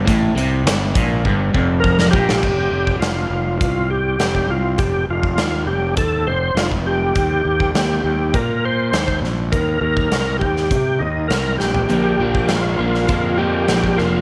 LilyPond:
<<
  \new Staff \with { instrumentName = "Tonewheel organ" } { \time 4/4 \key f \mixolydian \tempo 4 = 101 r2. bes'8 g'8~ | g'4 f'4 f'8 g'4 f'8 | g'8 f'4 g'8 a'8 c''8 f'8 g'8~ | g'4 g'4 bes'8 c''4 r8 |
bes'8 bes'4 g'4 ees'8 bes'8 g'8~ | g'4 f'4 f'8 g'4 f'8 | }
  \new Staff \with { instrumentName = "Steel-string acoustic guitar" } { \time 4/4 \key f \mixolydian r1 | r1 | r1 | r1 |
r1 | <bes, d f bes d' bes'>4 <f bes d' bes'>8 <f bes d' bes'>8 <bes, d f bes d' bes'>4 <f bes d' bes'>8 <f bes d' bes'>8 | }
  \new Staff \with { instrumentName = "Overdriven electric guitar" } { \clef bass \time 4/4 \key f \mixolydian a,8 c8 g,8 bes,8 g,8 f,4 bes,8 | r1 | r1 | r1 |
r1 | <bes, f bes>8 <bes, f bes>8 <bes, f bes>8 <bes, f bes>8 <bes, f bes>8 <bes, f bes>8 <bes, f bes>8 <bes, f bes>8 | }
  \new Staff \with { instrumentName = "Fingered electric bass" } { \clef bass \time 4/4 \key f \mixolydian a,,8 c,8 g,,8 bes,,8 g,,8 f,,4 bes,,8 | f,,8 f,,8 f,,8 f,,8 c,4 f,,8 c,8 | f,,8 f,,8 ees,8 f,,8 ees,8 f,,8 f,,4 | ees,8 ees,8 ees,8 ees,8 bes,4 ees,8 bes,,8 |
ees,8 ees,8 c,8 ees,8 c8 ees,8 c,8 bes,,8 | bes,,8 bes,,8 bes,,8 bes,,8 f,4 bes,,8 f,,8 | }
  \new DrumStaff \with { instrumentName = "Drums" } \drummode { \time 4/4 <hh bd>8 hh8 <hh sn>8 <hh bd>8 bd8 bd8 bd16 sn16 bd16 sn16 | <cymc bd>8. bd16 <hh sn>4 <hh bd>4 <hh sn>16 bd8. | <hh bd>8. bd16 <hh sn>4 <hh bd>4 <hh sn>16 bd8. | <hh bd>8. bd16 <hh sn>4 <hh bd>4 <hh sn>16 bd16 sn8 |
<hh bd>8. bd16 <hh sn>8 bd16 sn16 <hh bd>4 <hh sn>8 sn16 tomfh16 | hh8. bd16 <hh sn>8. sn16 <hh bd>4 <hh sn>16 bd16 sn8 | }
>>